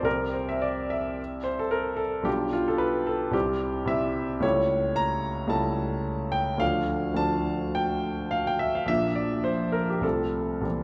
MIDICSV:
0, 0, Header, 1, 2, 480
1, 0, Start_track
1, 0, Tempo, 567108
1, 43, Time_signature, 4, 2, 24, 8
1, 1004, Tempo, 542495
1, 5804, Tempo, 566572
1, 8204, Tempo, 601805
1, 9313, End_track
2, 0, Start_track
2, 0, Title_t, "Grand piano"
2, 0, Program_c, 0, 0
2, 0, Control_c, 0, 64, 127
2, 21, Note_on_c, 0, 36, 46
2, 27, Note_on_c, 0, 55, 39
2, 37, Note_on_c, 0, 60, 38
2, 40, Note_on_c, 0, 70, 76
2, 42, Note_on_c, 0, 67, 37
2, 58, Control_c, 0, 64, 0
2, 192, Control_c, 0, 64, 127
2, 281, Note_on_c, 0, 72, 57
2, 282, Note_off_c, 0, 70, 0
2, 403, Note_off_c, 0, 72, 0
2, 412, Note_on_c, 0, 76, 65
2, 522, Note_on_c, 0, 74, 69
2, 529, Note_off_c, 0, 76, 0
2, 763, Note_on_c, 0, 76, 63
2, 765, Note_off_c, 0, 74, 0
2, 1020, Control_c, 0, 64, 0
2, 1177, Control_c, 0, 64, 127
2, 1226, Note_on_c, 0, 72, 70
2, 1243, Note_off_c, 0, 76, 0
2, 1353, Note_off_c, 0, 72, 0
2, 1364, Note_on_c, 0, 69, 69
2, 1467, Note_on_c, 0, 70, 68
2, 1481, Note_off_c, 0, 69, 0
2, 1694, Note_on_c, 0, 69, 68
2, 1710, Note_off_c, 0, 70, 0
2, 1910, Note_off_c, 0, 36, 0
2, 1913, Note_off_c, 0, 55, 0
2, 1918, Note_off_c, 0, 60, 0
2, 1921, Note_off_c, 0, 67, 0
2, 1926, Note_on_c, 0, 35, 52
2, 1937, Note_on_c, 0, 55, 44
2, 1939, Note_on_c, 0, 62, 43
2, 1944, Note_on_c, 0, 67, 76
2, 1946, Note_off_c, 0, 69, 0
2, 1949, Note_on_c, 0, 65, 43
2, 1972, Control_c, 0, 64, 0
2, 2130, Control_c, 0, 64, 127
2, 2178, Note_off_c, 0, 65, 0
2, 2191, Note_on_c, 0, 65, 67
2, 2192, Note_off_c, 0, 67, 0
2, 2315, Note_off_c, 0, 65, 0
2, 2324, Note_on_c, 0, 69, 67
2, 2417, Note_on_c, 0, 71, 73
2, 2442, Note_off_c, 0, 69, 0
2, 2667, Note_off_c, 0, 71, 0
2, 2669, Note_on_c, 0, 69, 69
2, 2867, Note_off_c, 0, 35, 0
2, 2873, Note_off_c, 0, 55, 0
2, 2873, Note_off_c, 0, 62, 0
2, 2883, Note_on_c, 0, 36, 53
2, 2896, Note_on_c, 0, 55, 44
2, 2899, Note_on_c, 0, 60, 43
2, 2904, Note_on_c, 0, 67, 75
2, 2905, Note_on_c, 0, 64, 43
2, 2907, Note_off_c, 0, 69, 0
2, 2927, Control_c, 0, 64, 0
2, 3061, Control_c, 0, 64, 127
2, 3350, Note_off_c, 0, 36, 0
2, 3356, Note_off_c, 0, 55, 0
2, 3362, Note_off_c, 0, 60, 0
2, 3364, Note_on_c, 0, 36, 49
2, 3365, Note_off_c, 0, 64, 0
2, 3369, Note_on_c, 0, 55, 43
2, 3377, Note_on_c, 0, 60, 43
2, 3379, Note_off_c, 0, 67, 0
2, 3383, Note_on_c, 0, 64, 44
2, 3384, Note_on_c, 0, 76, 78
2, 3846, Note_off_c, 0, 55, 0
2, 3848, Note_off_c, 0, 36, 0
2, 3849, Note_on_c, 0, 37, 54
2, 3855, Note_off_c, 0, 60, 0
2, 3857, Note_off_c, 0, 64, 0
2, 3860, Note_on_c, 0, 55, 44
2, 3866, Note_on_c, 0, 57, 45
2, 3870, Note_on_c, 0, 64, 44
2, 3870, Note_on_c, 0, 73, 83
2, 3873, Note_off_c, 0, 76, 0
2, 3889, Control_c, 0, 64, 0
2, 4017, Control_c, 0, 64, 127
2, 4342, Note_on_c, 0, 82, 89
2, 4353, Note_off_c, 0, 73, 0
2, 4783, Note_off_c, 0, 37, 0
2, 4790, Note_off_c, 0, 55, 0
2, 4796, Note_on_c, 0, 37, 56
2, 4801, Note_off_c, 0, 57, 0
2, 4803, Note_off_c, 0, 64, 0
2, 4804, Note_on_c, 0, 55, 45
2, 4815, Note_on_c, 0, 57, 46
2, 4818, Note_on_c, 0, 81, 74
2, 4821, Note_on_c, 0, 64, 43
2, 4827, Note_off_c, 0, 82, 0
2, 5544, Note_on_c, 0, 79, 80
2, 5555, Note_off_c, 0, 81, 0
2, 5757, Note_off_c, 0, 37, 0
2, 5761, Note_off_c, 0, 55, 0
2, 5767, Note_off_c, 0, 57, 0
2, 5770, Note_off_c, 0, 64, 0
2, 5773, Note_on_c, 0, 38, 54
2, 5779, Note_on_c, 0, 53, 47
2, 5788, Note_on_c, 0, 57, 47
2, 5791, Note_on_c, 0, 77, 86
2, 5795, Note_on_c, 0, 62, 47
2, 5796, Note_off_c, 0, 79, 0
2, 5818, Control_c, 0, 64, 0
2, 5948, Control_c, 0, 64, 127
2, 6239, Note_off_c, 0, 38, 0
2, 6248, Note_off_c, 0, 53, 0
2, 6252, Note_on_c, 0, 38, 52
2, 6255, Note_off_c, 0, 57, 0
2, 6260, Note_on_c, 0, 53, 43
2, 6262, Note_off_c, 0, 62, 0
2, 6268, Note_on_c, 0, 57, 42
2, 6273, Note_on_c, 0, 81, 82
2, 6274, Note_off_c, 0, 77, 0
2, 6275, Note_on_c, 0, 62, 42
2, 6761, Note_off_c, 0, 81, 0
2, 6768, Note_on_c, 0, 79, 79
2, 7242, Note_on_c, 0, 77, 80
2, 7249, Note_off_c, 0, 79, 0
2, 7366, Note_off_c, 0, 77, 0
2, 7380, Note_on_c, 0, 79, 75
2, 7483, Note_on_c, 0, 76, 79
2, 7495, Note_off_c, 0, 79, 0
2, 7607, Note_off_c, 0, 76, 0
2, 7617, Note_on_c, 0, 77, 69
2, 7682, Note_off_c, 0, 38, 0
2, 7686, Note_off_c, 0, 53, 0
2, 7690, Note_off_c, 0, 57, 0
2, 7693, Note_off_c, 0, 62, 0
2, 7707, Note_on_c, 0, 34, 54
2, 7719, Note_on_c, 0, 53, 42
2, 7722, Note_on_c, 0, 58, 44
2, 7725, Note_on_c, 0, 76, 87
2, 7731, Note_on_c, 0, 62, 43
2, 7734, Note_off_c, 0, 77, 0
2, 7747, Control_c, 0, 64, 0
2, 7866, Control_c, 0, 64, 127
2, 7958, Note_on_c, 0, 74, 62
2, 7965, Note_off_c, 0, 76, 0
2, 8199, Note_on_c, 0, 72, 73
2, 8200, Note_off_c, 0, 74, 0
2, 8427, Note_on_c, 0, 70, 65
2, 8433, Note_off_c, 0, 72, 0
2, 8551, Note_off_c, 0, 70, 0
2, 8565, Note_on_c, 0, 67, 58
2, 8638, Note_off_c, 0, 34, 0
2, 8643, Note_off_c, 0, 53, 0
2, 8645, Note_off_c, 0, 58, 0
2, 8649, Note_off_c, 0, 62, 0
2, 8655, Note_on_c, 0, 36, 46
2, 8667, Note_on_c, 0, 53, 38
2, 8669, Note_on_c, 0, 57, 42
2, 8672, Note_on_c, 0, 69, 66
2, 8675, Note_on_c, 0, 60, 40
2, 8681, Note_off_c, 0, 67, 0
2, 8690, Control_c, 0, 64, 0
2, 8817, Control_c, 0, 64, 127
2, 9122, Note_off_c, 0, 36, 0
2, 9134, Note_on_c, 0, 36, 45
2, 9139, Note_off_c, 0, 53, 0
2, 9140, Note_off_c, 0, 57, 0
2, 9140, Note_off_c, 0, 60, 0
2, 9143, Note_on_c, 0, 52, 37
2, 9149, Note_on_c, 0, 58, 37
2, 9152, Note_on_c, 0, 60, 37
2, 9172, Control_c, 0, 64, 0
2, 9313, Note_off_c, 0, 36, 0
2, 9313, Note_off_c, 0, 52, 0
2, 9313, Note_off_c, 0, 58, 0
2, 9313, Note_off_c, 0, 60, 0
2, 9313, Note_off_c, 0, 69, 0
2, 9313, End_track
0, 0, End_of_file